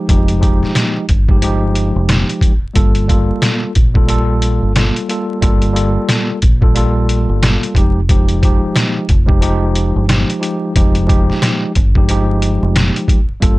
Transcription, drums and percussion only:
0.09 kick loud
0.09 closed hi-hat loud
0.28 closed hi-hat medium
0.43 kick medium
0.43 closed hi-hat medium
0.63 snare soft
0.75 snare loud
0.75 snare medium
0.75 closed hi-hat loud
1.09 kick medium
1.09 closed hi-hat medium
1.29 kick loud
1.42 closed hi-hat loud
1.75 closed hi-hat medium
2.09 snare loud
2.09 closed hi-hat medium
2.30 closed hi-hat medium
2.41 kick medium
2.41 closed hi-hat medium
2.75 kick loud
2.75 closed hi-hat loud
2.95 closed hi-hat medium
3.09 kick medium
3.09 closed hi-hat medium
3.42 snare loud
3.42 snare medium
3.42 closed hi-hat loud
3.75 kick medium
3.75 closed hi-hat medium
3.95 kick loud
4.09 closed hi-hat loud
4.42 closed hi-hat medium
4.76 snare loud
4.76 closed hi-hat medium
4.96 closed hi-hat medium
5.09 closed hi-hat medium
5.42 kick loud
5.42 closed hi-hat medium
5.62 closed hi-hat medium
5.76 closed hi-hat medium
6.09 snare loud
6.09 snare medium
6.09 closed hi-hat loud
6.42 kick medium
6.42 closed hi-hat medium
6.62 kick medium
6.76 closed hi-hat loud
7.09 closed hi-hat medium
7.43 snare loud
7.43 closed hi-hat medium
7.63 closed hi-hat medium
7.75 kick medium
7.75 closed hi-hat medium
8.09 kick loud
8.09 closed hi-hat medium
8.28 closed hi-hat medium
8.43 kick medium
8.43 closed hi-hat medium
8.76 snare loud
8.76 snare medium
8.76 closed hi-hat loud
9.09 kick medium
9.09 closed hi-hat medium
9.29 kick loud
9.42 closed hi-hat loud
9.75 closed hi-hat medium
10.09 snare loud
10.09 snare medium
10.09 closed hi-hat medium
10.30 closed hi-hat medium
10.43 closed hi-hat medium
10.76 kick loud
10.76 closed hi-hat loud
10.95 closed hi-hat medium
11.09 kick medium
11.09 closed hi-hat medium
11.30 snare soft
11.42 snare loud
11.42 snare medium
11.42 closed hi-hat loud
11.75 kick medium
11.75 closed hi-hat medium
11.95 kick medium
12.09 closed hi-hat loud
12.42 closed hi-hat medium
12.76 snare loud
12.76 snare medium
12.76 closed hi-hat medium
12.96 closed hi-hat medium
13.08 kick medium
13.08 closed hi-hat medium
13.42 kick loud
13.42 closed hi-hat medium

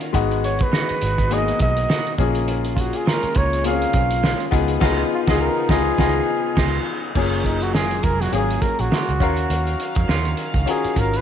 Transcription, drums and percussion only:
0.01 closed hi-hat soft
0.14 kick medium
0.14 closed hi-hat medium
0.31 closed hi-hat soft
0.44 closed hi-hat medium
0.59 kick medium
0.59 closed hi-hat medium
0.73 snare loud
0.89 closed hi-hat soft
1.01 closed hi-hat medium
1.18 kick medium
1.18 closed hi-hat soft
1.31 closed hi-hat medium
1.48 closed hi-hat soft
1.60 kick medium
1.60 closed hi-hat medium
1.77 closed hi-hat medium
1.90 snare loud
2.07 closed hi-hat soft
2.18 kick loud
2.18 closed hi-hat medium
2.35 closed hi-hat soft
2.48 closed hi-hat medium
2.65 closed hi-hat soft
2.77 kick medium
2.77 closed hi-hat medium
2.93 closed hi-hat soft
3.07 snare loud
3.23 closed hi-hat soft
3.35 kick medium
3.35 closed hi-hat medium
3.53 closed hi-hat medium
3.64 closed hi-hat medium
3.82 closed hi-hat soft
3.93 kick medium
3.93 closed hi-hat medium
4.11 closed hi-hat medium
4.24 snare loud
4.40 closed hi-hat soft
4.52 kick loud
4.52 closed hi-hat medium
4.68 closed hi-hat medium
4.81 kick loud
4.81 snare loud
4.81 crash medium
5.28 kick loud
5.28 snare loud
5.69 kick loud
5.69 snare loud
5.98 kick loud
5.98 snare loud
6.57 kick medium
6.57 snare loud
6.57 crash medium
7.15 kick loud
7.15 crash medium
7.32 closed hi-hat soft
7.44 kick medium
7.44 closed hi-hat medium
7.61 closed hi-hat soft
7.75 snare loud
7.91 closed hi-hat soft
8.03 kick medium
8.03 closed hi-hat medium
8.21 snare soft
8.21 closed hi-hat medium
8.33 closed hi-hat medium
8.50 closed hi-hat soft
8.62 kick medium
8.62 closed hi-hat medium
8.79 closed hi-hat medium
8.92 snare loud
9.09 closed hi-hat soft
9.20 kick loud
9.20 closed hi-hat medium
9.36 closed hi-hat soft
9.50 closed hi-hat medium
9.67 closed hi-hat soft
9.80 closed hi-hat medium
9.95 kick medium
9.95 closed hi-hat soft
10.09 snare loud
10.25 closed hi-hat soft
10.37 closed hi-hat medium
10.54 kick medium
10.54 closed hi-hat soft
10.67 closed hi-hat medium
10.84 closed hi-hat soft
10.96 kick medium
10.96 closed hi-hat medium
11.14 closed hi-hat medium

